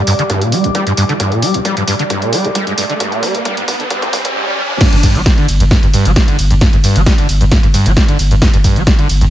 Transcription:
Already playing: G3 G4 D5 D6, riser
0.07 G2, open hi-hat
0.19 D3, closed hi-hat
0.30 G2, kick, closed hi-hat
0.42 A#2, closed hi-hat
0.52 G3, open hi-hat
0.64 G1, closed hi-hat
0.75 G3, kick, closed hi-hat
0.87 G2, closed hi-hat
0.97 G2, open hi-hat
1.09 D3, closed hi-hat
1.20 G2, kick, closed hi-hat
1.32 A#2, closed hi-hat
1.42 G3, open hi-hat
1.54 G1, closed hi-hat
1.65 G3, kick, closed hi-hat
1.77 G2, closed hi-hat
1.88 G2, open hi-hat
1.99 D3, closed hi-hat
2.10 G2, kick, closed hi-hat
2.22 A#2, closed hi-hat
2.33 G3, open hi-hat
2.45 G1, closed hi-hat
2.55 G3, kick, closed hi-hat
2.67 G2, closed hi-hat
2.78 G2, open hi-hat
2.90 D3, closed hi-hat
3.00 G2, kick, closed hi-hat
3.12 A#2, closed hi-hat
3.23 G3, kick, open hi-hat
3.35 G1, closed hi-hat
3.45 G3, kick, closed hi-hat
3.57 G2, closed hi-hat
3.68 G2, kick, open hi-hat
3.80 D3, closed hi-hat
3.90 G2, kick, closed hi-hat, swell
4.02 A#2, kick, closed hi-hat
4.13 G2, kick, open hi-hat
4.25 kick, closed hi-hat
4.36 G#2
4.47 G3
4.58 G3
4.70 F2
4.81 G2, kick, snare, closed hi-hat, crash, ride, shaker
4.93 G1 G2, closed hi-hat
5.03 G2, kick, open hi-hat, ride, shaker
5.15 G1 G3, closed hi-hat, shaker
5.26 G3, kick, snare, closed hi-hat, ride, shaker
5.38 D3, closed hi-hat
5.48 G1, open hi-hat, ride, shaker
5.60 G1 G2, closed hi-hat, shaker
5.71 G2, kick, snare, closed hi-hat, ride, shaker
5.83 G1 G2, closed hi-hat
5.94 G2, open hi-hat, ride, shaker
6.05 G1 G3, closed hi-hat, shaker
6.16 G3, kick, snare, closed hi-hat, ride, shaker
6.28 D3, closed hi-hat
6.39 G1, open hi-hat, ride, shaker
6.51 G1 G2, closed hi-hat, shaker
6.61 G2, kick, snare, closed hi-hat, ride, shaker
6.73 G1 G2, closed hi-hat
6.84 G2, open hi-hat, ride, shaker
6.96 G1 G3, closed hi-hat, shaker
7.06 G3, kick, snare, closed hi-hat, ride, shaker
7.18 D3, closed hi-hat
7.29 G1, open hi-hat, ride, shaker
7.41 G1 G2, closed hi-hat, shaker
7.52 G2, kick, snare, closed hi-hat, ride, shaker
7.63 G1 G2, closed hi-hat
7.74 G2, open hi-hat, ride, shaker
7.86 G1 G3, closed hi-hat, shaker
7.97 G3, kick, snare, closed hi-hat, ride, shaker
8.08 D3, closed hi-hat
8.19 G1, open hi-hat, ride, shaker
8.31 G1 G2, closed hi-hat, shaker
8.42 G2, kick, snare, closed hi-hat, ride, shaker
8.54 G1 G2, closed hi-hat
8.64 G2, kick, open hi-hat, ride, shaker
8.76 G1 G3, closed hi-hat, shaker
8.87 G3, kick, snare, closed hi-hat, ride, shaker
8.99 D3, closed hi-hat
9.09 G1, open hi-hat, ride, shaker
9.21 G1 G2, closed hi-hat, shaker

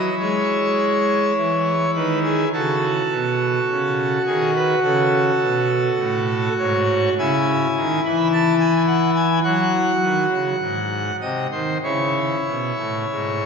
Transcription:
Already playing: E4 D#5
0.19 G#3 C#5
1.37 E3
1.95 D#3 B4
2.24 G#4
2.53 C#3 F#4 A4
3.11 B2
3.70 C#3
4.27 D#3 G#4
4.55 B4
4.83 C#3 A4
5.41 B2
5.98 A2
6.59 G#2 C#5
7.19 C#3 E4 G#5
7.77 D#3
8.05 E3 B5
8.33 A5
8.60 G#5
8.87 F#5
9.15 G#5
9.44 F#3 F#4 F#5
10.02 D#3
10.30 C#3
10.60 G#2
11.21 C3 D#5
11.52 D#3 C5
11.83 C#3 E4 C#5
12.46 B2
12.78 A2
13.11 G#2

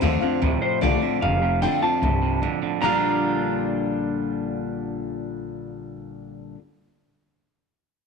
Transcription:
Already playing: F2 C5
0.01 D#2 F2 D3 A3 C4 F4
0.21 F2 D3 C4 F4, muted upright bass stroke
0.42 D2 F2 A2 C3
0.61 F2 C3 C5, muted upright bass stroke
0.81 C2 F2 D3 A3 C4 F4 D5
1.02 F2 D3 C4 F4, muted upright bass stroke
1.22 F1 F2 C3 F5
1.42 F2 C3
1.61 F2 D3 A3 C4 F4 G5
1.82 F2 D3 C4 F4 A5, muted upright bass stroke
2.02 C2 F2 G2 C3
2.22 F2 C3
2.42 F2 A2 D3
2.62 F2 D3, muted upright bass stroke
2.81 A#1 A#2 D3 G3 D4 A#5
2.85 F4

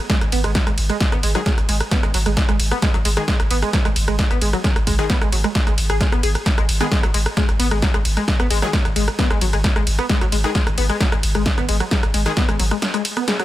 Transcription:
0.10 G#3, kick, snare, closed hi-hat, ride
0.21 G#1, cross-stick, closed hi-hat
0.32 G#1 B3, open hi-hat, ride
0.44 G#1 G#3, cross-stick, closed hi-hat
0.55 F#3, kick, snare, closed hi-hat, ride
0.67 G#1 G#3, cross-stick, closed hi-hat
0.78 G#1, open hi-hat, ride
0.90 G#3, cross-stick, closed hi-hat
1.00 kick, snare, closed hi-hat, ride
1.12 G#1 B3, cross-stick, closed hi-hat
1.23 G#1 G#3, open hi-hat, ride
1.35 D#3 F#3 G#3 G#4, cross-stick, closed hi-hat
1.46 G#3, kick, snare, closed hi-hat, ride
1.58 G#1, cross-stick, closed hi-hat
1.69 G#1 G#3, open hi-hat, ride
1.80 cross-stick, closed hi-hat
1.91 B3, kick, snare, closed hi-hat, ride
2.03 G#1 G#3, cross-stick, closed hi-hat
2.14 G#1 F#3, open hi-hat, ride
2.26 G#1 G#3, cross-stick, closed hi-hat
2.37 kick, snare, closed hi-hat, ride
2.49 G#1 G#3, cross-stick, closed hi-hat
2.60 G#1, open hi-hat, ride
2.71 B3, cross-stick, closed hi-hat
2.82 G#3, kick, snare, closed hi-hat, ride
2.94 G#1 F#3, cross-stick, closed hi-hat
3.05 G#1 G#3, open hi-hat, ride
3.17 D#3 G#3 G#4, cross-stick, closed hi-hat
3.28 G#3, kick, snare, closed hi-hat, ride
3.40 G#1, cross-stick, closed hi-hat
3.51 G#1 B3, open hi-hat, ride
3.62 G#3, cross-stick, closed hi-hat
3.73 F#3, kick, snare, closed hi-hat, ride
3.85 G#1 G#3, cross-stick, closed hi-hat
3.96 G#1, open hi-hat, ride
4.08 G#1 G#3, cross-stick, closed hi-hat
4.19 kick, snare, closed hi-hat, ride
4.31 G#1 B3, cross-stick, closed hi-hat
4.41 G#1 G#3, open hi-hat, ride
4.53 F#3, cross-stick, closed hi-hat
4.64 G#3, kick, snare, closed hi-hat, ride
4.76 G#1, cross-stick, closed hi-hat
4.87 G#1 G#3, kick, open hi-hat, ride
4.99 D#3 G#3 G#4, cross-stick, closed hi-hat
5.10 B3, kick, snare, closed hi-hat, ride
5.21 G#1 G#3, cross-stick, closed hi-hat
5.32 G#1 F#3, open hi-hat, ride
5.44 G#3, cross-stick, closed hi-hat
5.55 kick, snare, closed hi-hat, ride
5.67 G#1 G#3, cross-stick, closed hi-hat
5.78 G#1, open hi-hat, ride
5.90 G#1 G#4, cross-stick, closed hi-hat
6.01 G#3, kick, snare, closed hi-hat, ride
6.12 G#1 B3, cross-stick, closed hi-hat
6.23 G#1 G#4, open hi-hat, ride
6.35 cross-stick, closed hi-hat
6.46 kick, snare, closed hi-hat, ride
6.58 G#1 G#3, cross-stick, closed hi-hat
6.69 G#1, open hi-hat, ride
6.81 D#3 G#3 B3 G#4, cross-stick, closed hi-hat
6.91 G#3, kick, snare, closed hi-hat, ride
7.03 G#1 F#3, cross-stick, closed hi-hat
7.14 G#1 G#3, open hi-hat, ride
7.26 cross-stick, closed hi-hat
7.37 G#3, kick, snare, closed hi-hat, ride
7.49 G#1, cross-stick, closed hi-hat
7.59 G#1 B3, open hi-hat, ride
7.71 G#1 G#3, cross-stick, closed hi-hat
7.82 F#3, kick, snare, closed hi-hat, ride
7.94 G#1 G#3, cross-stick, closed hi-hat
8.05 G#1, open hi-hat, ride
8.17 G#3, cross-stick, closed hi-hat
8.28 kick, snare, closed hi-hat, ride
8.40 G#1 B3, cross-stick, closed hi-hat
8.50 G#1 G#3, open hi-hat, ride
8.62 D#3 F#3 G#3 G#4, cross-stick, closed hi-hat
8.73 G#3, kick, snare, closed hi-hat, ride
8.85 G#1, cross-stick, closed hi-hat
8.96 G#1 G#3, open hi-hat, ride
9.08 cross-stick, closed hi-hat
9.19 B3, kick, snare, closed hi-hat, ride
9.30 G#1 G#3, cross-stick, closed hi-hat
9.41 G#1 F#3, open hi-hat, ride
9.53 G#1 G#3, cross-stick, closed hi-hat
9.64 kick, snare, closed hi-hat, ride
9.76 G#1 G#3, cross-stick, closed hi-hat
9.87 G#1, open hi-hat, ride
9.99 B3, cross-stick, closed hi-hat
10.09 G#3, kick, snare, closed hi-hat, ride
10.21 G#1 F#3, cross-stick, closed hi-hat
10.32 G#1 G#3, open hi-hat, ride
10.44 D#3 G#3 G#4, cross-stick, closed hi-hat
10.55 G#3, kick, snare, closed hi-hat, ride
10.67 G#1, cross-stick, closed hi-hat
10.78 G#1 B3, open hi-hat, ride
10.89 G#3, cross-stick, closed hi-hat
11.00 F#3, kick, snare, closed hi-hat, ride
11.12 G#1 G#3, cross-stick, closed hi-hat
11.23 G#1, open hi-hat, ride
11.35 G#1 G#3, cross-stick, closed hi-hat
11.46 kick, snare, closed hi-hat, ride
11.58 G#1 B3, cross-stick, closed hi-hat
11.69 G#1 G#3, open hi-hat, ride
11.80 F#3, cross-stick, closed hi-hat
11.91 G#3, kick, snare, closed hi-hat, ride
12.03 G#1, cross-stick, closed hi-hat
12.14 G#1 G#3, open hi-hat, ride
12.26 D#3 G#3 G#4, cross-stick, closed hi-hat
12.37 B3, kick, snare, closed hi-hat, ride
12.49 G#1 G#3, cross-stick, closed hi-hat
12.60 G#1 F#3, open hi-hat, ride
12.71 G#3, cross-stick, closed hi-hat
12.82 snare, closed hi-hat, ride
12.94 G#3, cross-stick, closed hi-hat
13.05 open hi-hat, ride
13.17 B3, cross-stick, closed hi-hat
13.28 G#3, snare, closed hi-hat, ride
13.40 F#3, cross-stick, closed hi-hat

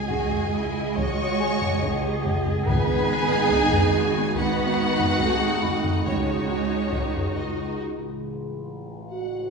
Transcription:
Already playing: C#2 G#3 G#4 C#5 D#5 G#5
0.08 F#4 F#5, taiko
0.32 taiko low
0.52 E4
0.96 F#4 C#5 C#6, taiko
1.40 G#4 G#5
1.62 taiko low
1.82 G#4, taiko
2.25 taiko low
2.46 taiko low
2.66 G#1 G#2 B3 D#4 G#4 B4 G#5, taiko
3.50 D#4, taiko
3.72 taiko low
3.93 F#4
4.35 B3 D#4 F#4 B4 F#5, taiko
4.99 taiko low
5.20 A3 G#4, taiko
5.62 D#4 B5, taiko low
5.84 taiko low
6.05 C#2 G#3 C#4 D#4 F#4 C#5, taiko
6.92 taiko
7.14 taiko low
7.35 D#4 D#5
7.80 A1
9.12 F#4 F#5

